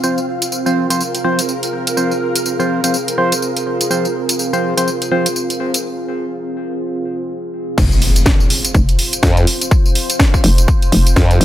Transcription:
0.00 0.19 F3 medium
0.00 5.84 C4 medium
0.00 7.74 C4 medium
0.00 0.19 C4 medium
0.00 5.84 F4 medium
0.00 7.74 F4 medium
0.00 0.19 F4 medium
0.00 7.77 G#4 medium
0.00 5.84 A#4 medium
0.00 0.19 C5 medium
0.00 5.84 F5 medium
0.00 tambourine medium
0.18 tambourine soft
0.42 closed hi-hat medium
0.42 tambourine medium
0.52 tambourine soft
0.66 0.87 F3 medium
0.66 0.87 C4 medium
0.66 0.87 F4 medium
0.66 0.87 C5 loud
0.66 tambourine soft
0.90 1.03 F3 medium
0.90 1.03 C4 medium
0.90 1.03 F4 medium
0.90 1.03 C5 medium
0.90 closed hi-hat medium
0.90 tambourine medium
1.01 tambourine medium
1.15 closed hi-hat soft
1.15 tambourine soft
1.24 1.40 F3 medium
1.24 1.40 C4 medium
1.24 1.40 F4 medium
1.24 1.40 C5 loud
1.39 closed hi-hat medium
1.39 tambourine medium
1.49 tambourine soft
1.63 closed hi-hat soft
1.63 tambourine soft
1.87 closed hi-hat medium
1.87 tambourine medium
1.97 2.13 F3 medium
1.97 2.13 C4 medium
1.97 2.13 F4 medium
1.97 2.13 C5 medium
1.97 tambourine medium
2.11 tambourine soft
2.35 closed hi-hat medium
2.35 tambourine medium
2.46 tambourine medium
2.60 2.80 F3 medium
2.60 2.80 C4 medium
2.60 2.80 F4 medium
2.60 2.80 C5 medium
2.60 tambourine soft
2.84 2.96 F3 medium
2.84 2.96 C4 medium
2.84 2.96 F4 medium
2.84 2.96 C5 medium
2.84 closed hi-hat medium
2.84 tambourine medium
2.94 tambourine medium
3.08 closed hi-hat soft
3.08 tambourine soft
3.18 3.34 F3 medium
3.18 3.34 C4 medium
3.18 3.34 F4 medium
3.18 3.34 C5 loud
3.32 closed hi-hat medium
3.32 tambourine medium
3.42 tambourine medium
3.57 closed hi-hat soft
3.57 tambourine soft
3.81 closed hi-hat medium
3.81 tambourine medium
3.91 4.06 F3 medium
3.91 4.06 C4 medium
3.91 4.06 F4 medium
3.91 4.06 C5 medium
3.91 tambourine medium
4.05 tambourine soft
4.29 closed hi-hat medium
4.29 tambourine medium
4.39 tambourine medium
4.53 4.74 F3 medium
4.53 4.74 C4 medium
4.53 4.74 F4 medium
4.53 4.74 C5 loud
4.53 tambourine soft
4.77 4.90 F3 medium
4.77 4.90 C4 medium
4.77 4.90 F4 medium
4.77 4.90 C5 medium
4.77 closed hi-hat medium
4.77 tambourine medium
4.88 tambourine medium
5.02 closed hi-hat medium
5.02 tambourine soft
5.12 5.27 F3 medium
5.12 5.27 C4 medium
5.12 5.27 F4 medium
5.12 5.27 C5 loud
5.26 closed hi-hat medium
5.26 tambourine medium
5.36 tambourine medium
5.50 closed hi-hat soft
5.50 tambourine soft
5.74 closed hi-hat medium
5.74 tambourine medium
7.78 8.25 F1 medium
7.78 11.45 C4 medium
7.78 11.45 F4 medium
7.78 11.45 C5 medium
7.78 kick loud
7.78 crash loud
7.78 tambourine medium
7.78 impact medium
7.92 tambourine soft
8.02 open hi-hat loud
8.16 closed hi-hat medium
8.16 tambourine medium
8.26 kick loud
8.26 snare loud
8.26 tambourine medium
8.40 11.45 C5 medium
8.40 tambourine soft
8.50 open hi-hat loud
8.65 closed hi-hat medium
8.65 tambourine medium
8.74 8.97 F1 loud
8.74 kick loud
8.74 tambourine medium
8.89 closed hi-hat medium
8.89 tambourine soft
8.99 open hi-hat loud
9.13 closed hi-hat medium
9.13 tambourine medium
9.23 9.46 F2 medium
9.23 kick loud
9.23 snare loud
9.23 tambourine medium
9.37 closed hi-hat medium
9.37 tambourine soft
9.47 open hi-hat loud
9.61 closed hi-hat medium
9.61 tambourine medium
9.71 kick loud
9.71 tambourine medium
9.86 tambourine soft
9.95 open hi-hat loud
10.10 closed hi-hat medium
10.10 tambourine medium
10.20 kick loud
10.20 snare loud
10.20 tambourine medium
10.34 kick medium
10.34 tambourine soft
10.44 10.66 F1 loud
10.44 open hi-hat loud
10.58 closed hi-hat medium
10.58 tambourine medium
10.68 kick loud
10.68 tambourine medium
10.82 closed hi-hat medium
10.82 tambourine soft
10.92 11.15 F1 loud
10.92 open hi-hat loud
11.06 closed hi-hat medium
11.06 tambourine medium
11.16 11.39 F2 medium
11.16 kick loud
11.16 snare loud
11.16 tambourine medium
11.31 closed hi-hat medium
11.31 tambourine soft
11.41 11.45 F1 medium
11.41 open hi-hat loud

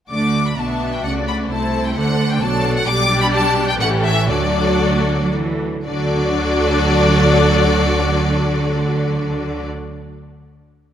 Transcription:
0.10 0.55 D2 soft
0.10 0.56 D3 soft
0.10 0.55 A3 soft
0.10 0.55 D4 soft
0.10 0.55 F#4 soft
0.10 0.54 D5 soft
0.10 0.44 D6 medium
0.47 0.58 B5 medium
0.58 1.04 B1 soft
0.58 1.04 B2 soft
0.58 1.04 B3 soft
0.58 1.49 D4 soft
0.58 1.49 F#4 soft
0.58 1.04 E5 soft
0.58 0.93 A5 medium
0.94 1.05 G5 soft
1.04 1.50 C#2 soft
1.04 1.50 C#3 soft
1.04 1.50 A3 soft
1.04 1.51 D5 soft
1.04 1.12 F#5 medium
1.28 1.36 B5 medium
1.49 1.96 C2 medium
1.49 1.96 C3 medium
1.49 2.41 A3 soft
1.49 1.97 E4 soft
1.49 1.95 A4 soft
1.49 2.40 C5 soft
1.49 1.85 A5 medium
1.87 1.98 G5 medium
1.96 2.42 D2 medium
1.96 2.42 D3 medium
1.96 2.42 D4 medium
1.96 2.40 A4 soft
1.96 2.30 F#5 medium
2.31 2.42 G5 medium
2.41 2.86 B1 medium
2.41 2.87 B2 medium
2.41 2.87 F#3 medium
2.41 2.87 D4 medium
2.41 2.87 A4 medium
2.41 2.87 D5 medium
2.41 2.76 A5 medium
2.76 2.88 F#5 medium
2.87 3.76 B1 medium
2.87 3.77 B2 medium
2.87 3.77 G3 medium
2.87 3.77 D4 medium
2.87 3.77 G4 medium
2.87 3.77 D5 medium
2.87 3.22 D6 loud
3.21 3.26 B5 medium
3.33 3.68 A5 medium
3.69 3.74 G5 medium
3.79 4.30 A1 medium
3.79 4.30 A2 medium
3.79 4.29 E3 medium
3.79 4.29 C#4 medium
3.79 4.29 G4 medium
3.79 4.28 A4 medium
3.79 3.88 F#5 medium
4.04 4.29 E5 medium
4.29 5.64 D2 medium
4.29 4.77 D3 medium
4.29 5.64 F#3 medium
4.29 5.64 D4 medium
4.29 5.63 F#4 medium
4.29 5.61 A4 medium
4.29 5.32 D5 medium
4.82 5.18 A3 medium
5.22 5.34 F#3 medium
5.34 5.72 E3 medium
5.74 5.84 D3 medium
5.85 9.66 D2 medium
5.85 9.66 D3 medium
5.85 9.66 F#3 medium
5.85 9.67 D4 medium
5.85 9.66 F#4 medium
5.85 9.66 A4 medium
5.85 9.66 D5 medium

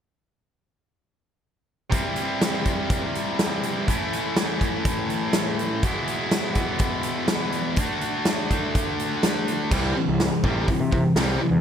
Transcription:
1.91 3.86 C3 medium
1.91 3.89 E3 medium
1.91 3.87 G3 medium
1.91 3.87 C4 medium
1.91 3.91 E4 medium
1.91 kick medium
1.91 closed hi-hat medium
2.16 closed hi-hat soft
2.41 snare medium
2.41 closed hi-hat medium
2.65 kick medium
2.65 closed hi-hat soft
2.90 kick loud
2.90 closed hi-hat medium
3.15 closed hi-hat medium
3.39 snare medium
3.39 closed hi-hat medium
3.63 closed hi-hat medium
3.88 5.82 A2 medium
3.88 5.82 E3 medium
3.88 5.83 A3 medium
3.88 5.83 C#4 medium
3.88 kick medium
3.88 closed hi-hat medium
3.92 5.84 E4 medium
4.13 closed hi-hat medium
4.36 snare medium
4.36 closed hi-hat medium
4.61 kick medium
4.61 closed hi-hat soft
4.85 kick medium
4.85 closed hi-hat medium
5.10 closed hi-hat soft
5.33 snare medium
5.33 closed hi-hat medium
5.59 closed hi-hat medium
5.83 7.77 E2 medium
5.83 7.77 B2 medium
5.83 7.77 E3 medium
5.83 7.78 G#3 medium
5.83 7.78 B3 medium
5.83 kick loud
5.83 closed hi-hat medium
5.87 7.78 E4 medium
6.08 closed hi-hat soft
6.31 snare loud
6.31 closed hi-hat medium
6.55 kick medium
6.55 closed hi-hat medium
6.79 kick loud
6.79 closed hi-hat medium
7.03 closed hi-hat medium
7.28 snare medium
7.28 closed hi-hat medium
7.52 closed hi-hat medium
7.76 9.71 D3 medium
7.76 9.71 A3 medium
7.76 9.72 D4 medium
7.76 kick medium
7.76 closed hi-hat medium
7.81 9.72 F#4 medium
8.01 closed hi-hat medium
8.25 snare medium
8.25 closed hi-hat medium
8.51 kick medium
8.51 closed hi-hat medium
8.75 kick medium
8.75 closed hi-hat medium
8.99 closed hi-hat soft
9.23 snare medium
9.23 closed hi-hat medium
9.48 closed hi-hat soft
9.71 9.92 C2 medium
9.71 9.95 C3 medium
9.71 9.95 E3 medium
9.71 9.95 G3 medium
9.71 kick medium
9.71 crash medium
9.96 10.19 C3 medium
9.96 10.18 E3 medium
10.08 10.29 C2 medium
10.20 10.43 C3 medium
10.20 10.43 E3 medium
10.20 snare medium
10.20 open hi-hat soft
10.44 10.65 A1 medium
10.44 10.67 C3 medium
10.44 10.68 E3 medium
10.44 10.68 G3 medium
10.44 kick medium
10.68 10.90 C3 medium
10.68 10.91 E3 medium
10.68 kick medium
10.68 open hi-hat soft
10.80 11.01 C3 medium
10.91 11.14 C3 medium
10.91 11.15 E3 medium
10.91 kick medium
11.16 11.37 C2 medium
11.16 11.40 C3 medium
11.16 11.40 E3 medium
11.16 11.41 G3 medium
11.16 snare medium
11.16 open hi-hat soft
11.41 11.61 C3 medium
11.41 11.61 E3 medium
11.51 11.61 E2 medium

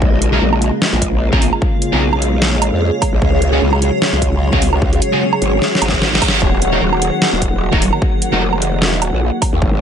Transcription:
0.00 0.40 A#1 loud
0.00 6.38 C#3 medium
0.00 6.38 G#3 medium
0.00 3.18 A#3 medium
0.00 3.19 F4 medium
0.00 9.81 G#4 medium
0.00 0.65 D#5 medium
0.00 kick loud
0.22 closed hi-hat medium
0.28 9.81 C#5 medium
0.32 0.37 C#4 medium
0.32 0.37 G#4 medium
0.32 0.37 A#4 loud
0.32 3.22 F5 medium
0.42 0.71 A#1 loud
0.53 low woodblock medium
0.62 closed hi-hat medium
0.82 snare loud
0.93 1.31 A#1 loud
1.02 kick medium
1.02 closed hi-hat medium
1.32 1.51 A#1 loud
1.32 1.37 C#4 medium
1.32 1.37 G#4 medium
1.32 1.37 A#4 medium
1.32 kick loud
1.42 open hi-hat medium
1.53 low woodblock medium
1.62 kick loud
1.82 closed hi-hat medium
1.93 2.48 B1 loud
1.93 1.97 C#4 medium
1.93 1.97 G#4 medium
1.93 1.97 A#4 loud
2.13 low woodblock medium
2.22 closed hi-hat medium
2.42 snare loud
2.48 2.71 A#1 loud
2.62 closed hi-hat medium
2.62 low woodblock medium
2.73 2.91 F2 medium
3.02 kick loud
3.02 open hi-hat medium
3.02 low woodblock medium
3.13 3.20 A#1 loud
3.22 3.60 C#2 loud
3.22 6.39 F#3 medium
3.22 9.58 F#4 medium
3.22 kick loud
3.42 closed hi-hat medium
3.53 3.57 C#4 medium
3.53 3.57 F#4 medium
3.53 3.57 G#4 loud
3.62 3.91 C#2 loud
3.73 low woodblock medium
3.82 closed hi-hat medium
4.02 snare loud
4.13 4.51 C#2 loud
4.22 kick medium
4.22 closed hi-hat medium
4.53 4.71 C#2 loud
4.53 4.57 C#4 medium
4.53 4.57 F#4 medium
4.53 4.57 G#4 loud
4.53 kick loud
4.61 9.81 F#5 loud
4.61 open hi-hat loud
4.73 5.00 C#2 loud
4.73 low woodblock medium
4.82 kick loud
4.93 closed hi-hat soft
5.02 closed hi-hat medium
5.13 5.17 C#4 medium
5.13 5.17 F#4 medium
5.13 5.17 G#4 loud
5.33 low woodblock medium
5.42 5.60 G#1 loud
5.42 closed hi-hat medium
5.62 snare medium
5.62 reverse cymbal medium
5.75 snare medium
5.82 6.20 G#1 loud
5.82 closed hi-hat medium
5.82 low woodblock medium
5.88 snare medium
5.93 kick medium
6.02 snare medium
6.15 snare loud
6.22 kick loud
6.22 open hi-hat loud
6.22 low woodblock medium
6.28 snare loud
6.42 6.80 D#1 loud
6.42 9.59 D#3 medium
6.42 9.59 F#3 medium
6.42 9.81 A#3 medium
6.42 kick loud
6.62 closed hi-hat medium
6.72 6.77 D#4 medium
6.72 6.77 F#4 medium
6.72 6.77 A#4 loud
6.82 7.11 D#1 loud
6.93 low woodblock medium
7.02 closed hi-hat medium
7.22 snare loud
7.33 7.71 D#1 loud
7.42 kick medium
7.42 closed hi-hat medium
7.72 7.91 D#1 loud
7.72 7.77 D#4 medium
7.72 7.77 F#4 medium
7.72 7.77 A#4 loud
7.72 kick loud
7.82 open hi-hat loud
7.93 low woodblock medium
8.02 kick loud
8.22 closed hi-hat medium
8.33 8.88 F1 loud
8.33 8.37 D#4 medium
8.33 8.37 F#4 medium
8.33 8.37 A#4 loud
8.53 low woodblock medium
8.62 closed hi-hat medium
8.82 snare loud
8.88 9.11 E1 loud
9.02 closed hi-hat medium
9.02 low woodblock medium
9.13 9.31 A#1 medium
9.42 kick loud
9.42 open hi-hat loud
9.42 low woodblock medium
9.53 9.60 D#2 loud
9.62 9.81 G#1 loud
9.62 9.81 B2 medium
9.62 9.81 G#3 medium
9.62 9.81 D#4 medium
9.62 9.81 F#4 loud
9.62 kick loud

